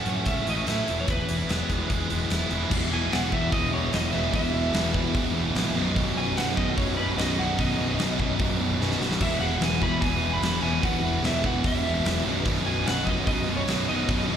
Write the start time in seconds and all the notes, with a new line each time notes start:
Already playing: A2 C#4 E4 A4 C#5 F#5
0.05 F#2 A3 C#4, closed hi-hat
0.25 C#2 A3 C#4 E5, kick, closed hi-hat
0.46 A1 C#4 E4 D#5, closed hi-hat
0.66 A2 E4 A4 E5, snare, closed hi-hat
0.88 E1 E2 B3 E4 G#4 B4, closed hi-hat
1.00 C#5
1.08 E1 E2 B4, kick, closed hi-hat
1.28 E1 E3 E4, closed hi-hat
1.48 E1 G#3 B3, snare, closed hi-hat
1.69 E1 E3 G#3, kick, closed hi-hat
1.90 E1 E3 G#3, kick, closed hi-hat
2.10 E1 G#3 B3, closed hi-hat
2.30 E1 B3 E4, snare, closed hi-hat
2.51 E1 G#3 E4, closed hi-hat
2.70 E1 E2 B2 E3 G#3 B3 E4 G#4 B4, kick, crash
2.92 E1 E2 B2 E3 G#5
3.12 E1 E2 B2 E3 F#5, snare, open hi-hat
3.32 E2 B2 E3 E5, kick
3.52 E1 E2 B2 E3 D#5, kick, open hi-hat
3.72 E2 B2 E3 C#5
3.92 E1 E2 B2 E3 D#5, snare, open hi-hat
4.12 E1 E2 B2 E3 G#3 B3 E4 E5
4.33 E1 E2 B2 E3 G#3 B3 E4 E5, kick, open hi-hat
4.53 E1 E2 B2 E3
4.74 E1 E2 B2 E3, snare, open hi-hat
4.94 E2 B2 E3, kick
5.14 E1 E2 B2 E3, kick, open hi-hat
5.24 D#5
5.34 E2 B2 E3
5.54 A#1 E2 B2 E3, snare, open hi-hat
5.76 B0 B1 F#2 B2 F#3 B3 D#4 F#4 B4
5.96 B0 B1 F#2 B2, kick, open hi-hat
6.16 B0 B1 F#2 B2 G#5
6.36 B0 B1 F#2 B2 F#5, snare, open hi-hat
6.48 snare
6.56 B1 F#2 B2 D#5, kick
6.77 B0 B1 F#2 B2 C#5, kick, open hi-hat
6.97 B1 F#2 B2 B4
7.18 B0 B1 F#2 B2 F#3 D#4 D#5, snare, open hi-hat
7.38 B0 B1 F#2 B2 F#3 D#4 F#5
7.58 B0 B1 F#2 B2 D#5, kick, open hi-hat
7.78 B0 B1 F#2 B2
7.99 B0 B1 F#2 B2, snare, open hi-hat
8.19 B1 F#2 B2, kick
8.39 B0 B1 F#2 B2, kick, open hi-hat
8.59 B1 F#2 B2
8.80 B0 B1 F#2 B2 F#3 D#4, snare
8.91 snare
9.00 B0 B1 F#2 B2, snare
9.11 snare
9.20 E1 E2 B2 E3 G#3 B3 E4 G#4 B4 E5, kick, open hi-hat, crash
9.40 E1 E2 B2 E3 F#5
9.59 E1 E2 B2 E3 G#5, snare, open hi-hat
9.73 snare
9.80 E2 B2 E3 B5, kick
10.01 E1 E2 B2 E3 G#5, kick, open hi-hat
10.22 E2 B2 E3
10.34 B5
10.41 E1 E2 B2 E3, snare, open hi-hat
10.61 E1 E2 B2 E3 G#3 B3 E4 G#5
10.83 E1 E2 B2 E3 G#3 B3 E4 F#5, kick, open hi-hat
11.02 E1 E2 B2 E3
11.22 E1 E2 B2 E3 E5, snare, open hi-hat
11.44 E2 B2 E3 F#5, kick
11.64 E1 E2 B2 E3 E5, kick, open hi-hat
11.85 E2 B2 E3
12.04 E1 E2 B2 E3, snare, open hi-hat
12.24 B0 B1 F#2 B2 F#3 B3 D#4 F#4 B4
12.45 B0 B1 F#2 B2, kick, open hi-hat
12.65 B0 B1 F#2 B2 G#5
12.86 B0 B1 F#2 B2 F#5, snare, open hi-hat
13.05 B1 F#2 B2 D#5, kick
13.27 B0 B1 F#2 B2 D#5, kick, open hi-hat
13.48 B1 F#2 B2
13.57 C#5
13.67 B0 B1 F#2 B2 F#3 D#4, snare, open hi-hat
13.88 B0 B1 F#2 B2 F#3 D#4 D#5
14.08 B0 B1 F#2 B2, kick, open hi-hat
14.29 B0 B1 F#2 B2